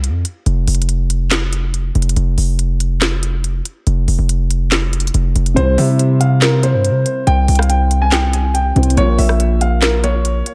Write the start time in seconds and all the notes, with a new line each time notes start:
Already playing: C2
0.04 closed hi-hat
0.09 F2
0.25 closed hi-hat
0.46 F1, closed hi-hat
0.67 F1, closed hi-hat, open hi-hat
0.75 closed hi-hat
0.82 closed hi-hat
0.89 closed hi-hat
1.10 closed hi-hat
1.31 snare, clap, closed hi-hat
1.53 closed hi-hat
1.74 closed hi-hat
1.95 F1, closed hi-hat
2.02 closed hi-hat
2.09 closed hi-hat
2.16 F1, closed hi-hat
2.38 F1, open hi-hat
2.59 closed hi-hat
2.80 closed hi-hat
3.01 snare, clap, closed hi-hat
3.23 closed hi-hat
3.44 closed hi-hat
3.65 closed hi-hat
3.87 F1, closed hi-hat
4.08 F1, open hi-hat
4.19 F1
4.29 closed hi-hat
4.51 closed hi-hat
4.72 snare, clap, closed hi-hat
4.93 closed hi-hat
5.00 closed hi-hat
5.07 closed hi-hat
5.14 F1, closed hi-hat
5.36 F1, closed hi-hat
5.46 closed hi-hat
5.54 C2 C3 G3 E4 C5, closed hi-hat
5.60 C5
5.78 C3 E5, open hi-hat
5.99 closed hi-hat
6.20 F5, closed hi-hat
6.42 A#4, snare, clap, closed hi-hat
6.63 C5, closed hi-hat
6.74 G2
6.85 closed hi-hat
6.90 C3
7.06 closed hi-hat
7.27 C2 G5, closed hi-hat
7.48 C2, closed hi-hat, open hi-hat
7.55 F5, cross-stick, closed hi-hat
7.63 closed hi-hat
7.69 G5, closed hi-hat
7.91 closed hi-hat
8.02 G#5
8.12 G5, snare, clap, closed hi-hat
8.33 G#5, closed hi-hat
8.54 G5, closed hi-hat
8.75 C2 C3 G3 E4 C5, closed hi-hat
8.83 closed hi-hat
8.90 closed hi-hat
8.95 A#1 A#3 A#4 C#5, closed hi-hat
9.00 F4
9.19 A#1 E5, open hi-hat
9.29 cross-stick
9.40 closed hi-hat
9.61 F5, closed hi-hat
9.82 A#4, snare, clap, closed hi-hat
10.04 C#5, closed hi-hat
10.25 closed hi-hat
10.46 closed hi-hat